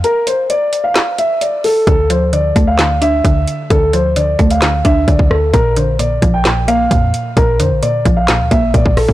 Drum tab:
HH |x-x-x-x-x-x-x-o-|x-x-x-x-x-x-x-x-|x-x-x-xxx-x-x---|x-x-x-x-x-x-x-x-|
CP |--------x-------|--------x-------|--------x-------|--------x-------|
SD |--------o-------|--------o-------|--------o-----r-|--------o-------|
BD |----------------|o-----o-----o---|o-----o---o-oo--|o-----o-----o---|

HH |x-x-x-x-x-x-x-o-|
CP |--------x-------|
SD |--------o-----r-|
BD |o-----o---o-oo-o|